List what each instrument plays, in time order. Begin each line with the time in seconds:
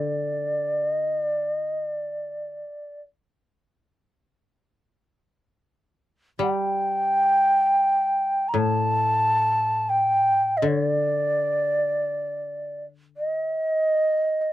Already playing: koto D3 G3, shakuhachi D5
0.94 shakuhachi D#5
1.18 shakuhachi D5
1.59 shakuhachi D#5
1.83 shakuhachi D5
6.39 koto G3, shakuhachi G5
8.49 shakuhachi A#5
8.54 koto A2
8.58 shakuhachi A5
9.89 shakuhachi G5
10.57 shakuhachi D#5
10.62 koto D3
10.68 shakuhachi C#5
10.83 shakuhachi D5
13.17 shakuhachi D#5
14.41 shakuhachi D#5